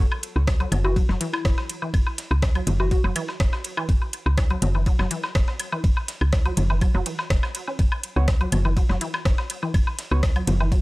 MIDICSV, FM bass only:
0, 0, Header, 1, 2, 480
1, 0, Start_track
1, 0, Tempo, 487805
1, 1907, Time_signature, 4, 2, 24, 8
1, 10642, End_track
2, 0, Start_track
2, 0, Title_t, "FM bass"
2, 0, Program_c, 0, 39
2, 353, Note_on_c, 0, 37, 87
2, 643, Note_off_c, 0, 37, 0
2, 706, Note_on_c, 0, 30, 102
2, 1002, Note_off_c, 0, 30, 0
2, 1072, Note_on_c, 0, 30, 98
2, 1147, Note_off_c, 0, 30, 0
2, 1427, Note_on_c, 0, 30, 82
2, 1508, Note_off_c, 0, 30, 0
2, 1907, Note_on_c, 0, 30, 94
2, 1989, Note_off_c, 0, 30, 0
2, 2272, Note_on_c, 0, 37, 88
2, 2562, Note_off_c, 0, 37, 0
2, 2626, Note_on_c, 0, 30, 102
2, 2922, Note_off_c, 0, 30, 0
2, 2991, Note_on_c, 0, 30, 99
2, 3066, Note_off_c, 0, 30, 0
2, 3345, Note_on_c, 0, 30, 81
2, 3428, Note_off_c, 0, 30, 0
2, 3826, Note_on_c, 0, 30, 97
2, 3908, Note_off_c, 0, 30, 0
2, 4191, Note_on_c, 0, 37, 84
2, 4482, Note_off_c, 0, 37, 0
2, 4546, Note_on_c, 0, 30, 100
2, 4842, Note_off_c, 0, 30, 0
2, 4911, Note_on_c, 0, 30, 100
2, 4986, Note_off_c, 0, 30, 0
2, 5266, Note_on_c, 0, 30, 82
2, 5348, Note_off_c, 0, 30, 0
2, 5746, Note_on_c, 0, 30, 97
2, 5828, Note_off_c, 0, 30, 0
2, 6112, Note_on_c, 0, 37, 87
2, 6403, Note_off_c, 0, 37, 0
2, 6467, Note_on_c, 0, 30, 100
2, 6762, Note_off_c, 0, 30, 0
2, 6833, Note_on_c, 0, 30, 99
2, 6907, Note_off_c, 0, 30, 0
2, 7186, Note_on_c, 0, 28, 100
2, 7268, Note_off_c, 0, 28, 0
2, 7666, Note_on_c, 0, 30, 99
2, 7748, Note_off_c, 0, 30, 0
2, 8032, Note_on_c, 0, 37, 88
2, 8323, Note_off_c, 0, 37, 0
2, 8386, Note_on_c, 0, 30, 100
2, 8682, Note_off_c, 0, 30, 0
2, 8752, Note_on_c, 0, 30, 103
2, 8827, Note_off_c, 0, 30, 0
2, 9106, Note_on_c, 0, 30, 85
2, 9188, Note_off_c, 0, 30, 0
2, 9586, Note_on_c, 0, 30, 96
2, 9668, Note_off_c, 0, 30, 0
2, 9953, Note_on_c, 0, 37, 88
2, 10243, Note_off_c, 0, 37, 0
2, 10306, Note_on_c, 0, 30, 99
2, 10602, Note_off_c, 0, 30, 0
2, 10642, End_track
0, 0, End_of_file